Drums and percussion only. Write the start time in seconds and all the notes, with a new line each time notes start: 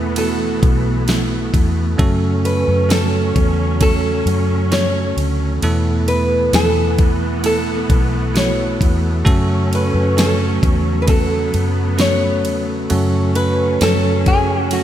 0.16 ride
0.63 kick, ride
1.08 snare, ride
1.54 kick, ride
1.99 kick, ride
2.45 ride
2.90 snare, ride
3.36 kick, ride
3.81 kick, ride
4.27 ride
4.72 snare, ride
5.18 ride
5.62 ride
6.08 ride
6.53 snare, ride
6.98 kick, ride
7.44 ride
7.90 kick, ride
8.36 snare, ride
8.81 kick, ride
9.26 kick, ride
9.73 ride
10.18 snare, ride
10.63 kick, ride
11.08 kick, ride
11.54 ride
11.99 snare, ride
12.45 ride
12.90 ride
13.35 ride
13.81 snare, ride
14.26 kick, ride
14.71 ride